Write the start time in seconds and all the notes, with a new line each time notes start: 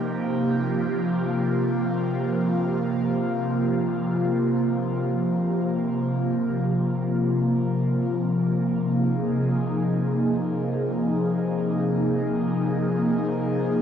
Already playing: C3 F3 A#3 D#4 G4
0.08 F4
8.78 D#4
8.85 G#4